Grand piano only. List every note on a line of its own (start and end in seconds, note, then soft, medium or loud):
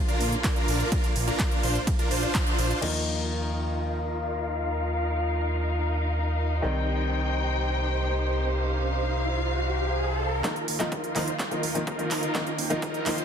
2.81 6.60 D#3 medium
2.81 6.60 F3 medium
2.81 6.61 A#3 medium
2.81 6.61 D#4 medium
6.62 10.41 D#3 medium
6.62 10.41 G3 medium
6.62 10.42 C4 medium
6.62 10.42 D#4 medium
10.44 10.50 D#3 medium
10.44 10.50 F3 medium
10.44 10.50 A#3 medium
10.44 10.50 D#4 medium
10.79 10.85 D#3 medium
10.79 10.86 F3 medium
10.79 10.86 A#3 medium
10.79 10.86 D#4 loud
11.15 11.21 D#3 medium
11.15 11.21 F3 medium
11.15 11.22 A#3 medium
11.15 11.22 D#4 loud
11.51 11.60 D#3 medium
11.51 11.61 F3 medium
11.51 11.61 A#3 medium
11.51 11.61 D#4 medium
11.75 11.81 D#3 medium
11.75 11.81 F3 medium
11.75 11.81 A#3 medium
11.75 11.81 D#4 medium
11.99 12.05 D#3 medium
11.99 12.05 F3 medium
11.99 12.05 A#3 medium
11.99 12.05 D#4 medium
12.34 12.40 D#3 medium
12.34 12.40 F3 medium
12.34 12.41 A#3 medium
12.34 12.41 D#4 medium
12.70 12.76 D#3 medium
12.70 12.76 F3 medium
12.70 12.76 A#3 medium
12.70 12.77 D#4 loud
13.06 13.12 D#3 medium
13.06 13.12 F3 medium
13.06 13.12 A#3 medium
13.06 13.12 D#4 loud